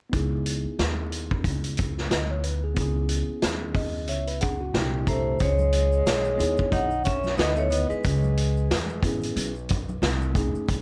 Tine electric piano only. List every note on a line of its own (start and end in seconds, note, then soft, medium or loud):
0.10 2.71 B3 medium
0.10 2.72 D#4 medium
0.14 2.73 E4 medium
0.14 2.09 G#4 medium
2.11 2.29 D#5 medium
2.31 2.44 C#5 medium
2.44 2.62 B4 medium
2.64 2.79 G#4 medium
2.74 4.70 B3 medium
2.74 4.71 C#4 medium
2.74 4.72 E4 medium
2.80 4.08 G#4 medium
3.76 4.07 D#5 medium
4.09 4.27 C#5 medium
4.09 4.40 E5 medium
4.28 4.41 B4 medium
4.41 4.60 G#4 medium
4.41 4.72 F#5 medium
4.61 4.92 F#4 medium
4.72 5.40 A#2 medium
4.72 5.40 D4 medium
4.72 5.41 E4 medium
4.72 5.41 G4 medium
4.72 5.05 G5 medium
5.08 5.39 A#5 medium
6.38 6.87 B3 medium
6.38 6.87 D#4 medium
6.38 6.88 E4 medium
6.38 6.88 G#4 medium
7.36 8.03 B3 medium
7.36 8.04 D#4 medium
7.36 8.05 E4 medium
7.36 7.47 A4 medium
7.46 8.08 B4 medium
9.02 9.51 B3 medium
9.02 9.52 C#4 medium
9.02 9.52 E4 medium
9.02 9.53 G#4 medium
10.34 10.75 A3 medium
10.34 10.76 C#4 medium
10.34 10.76 D#4 medium
10.34 10.77 G#4 medium